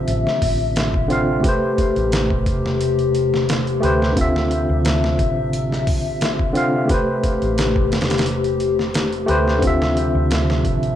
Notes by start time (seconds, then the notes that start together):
Already playing: C3 D3 F3 C4 F4 E5
0.08 A1, closed hi-hat
0.27 snare
0.42 A1, kick, open hi-hat
0.76 snare, closed hi-hat
0.94 kick
1.08 D3 C4 F4, closed hi-hat
1.12 F5
1.40 A3 G4
1.44 G4 B4, kick, closed hi-hat
1.49 C5
1.78 kick, closed hi-hat
1.96 A1, closed hi-hat
2.12 snare, closed hi-hat
2.30 kick
2.46 E1, kick, closed hi-hat
2.66 snare
2.81 closed hi-hat
2.99 closed hi-hat
3.15 closed hi-hat
3.34 snare
3.49 snare, closed hi-hat
3.67 closed hi-hat
3.80 D2 A3 G4 B4, closed hi-hat
3.85 C5
4.02 snare
4.12 D3 C4
4.16 F3 F4 E5, kick, closed hi-hat
4.21 E5
4.36 snare
4.51 closed hi-hat
4.69 D2
4.85 snare, closed hi-hat
5.04 snare
5.19 A1, kick, closed hi-hat
5.53 closed hi-hat
5.72 snare
5.87 kick, open hi-hat
6.21 snare, closed hi-hat
6.39 kick
6.53 D3 C4 F4, closed hi-hat
6.57 F5
6.85 A3 G4
6.89 G4 B4, kick, closed hi-hat
6.94 C5
7.24 kick, closed hi-hat
7.42 A1, closed hi-hat
7.58 snare, closed hi-hat
7.76 kick
7.92 E1, snare, closed hi-hat
8.01 snare, closed hi-hat
8.10 snare, closed hi-hat
8.18 snare, closed hi-hat
8.26 closed hi-hat
8.44 closed hi-hat
8.60 closed hi-hat
8.79 snare
8.94 snare, closed hi-hat
9.13 closed hi-hat
9.26 D2 A3 G4 B4, closed hi-hat
9.31 C5
9.48 snare
9.58 C3 D3 F3 C4 E5
9.62 F4, kick, closed hi-hat
9.67 E5
9.82 snare
9.97 closed hi-hat
10.15 D2
10.31 snare, closed hi-hat
10.50 snare
10.65 A1, kick, closed hi-hat
10.83 closed hi-hat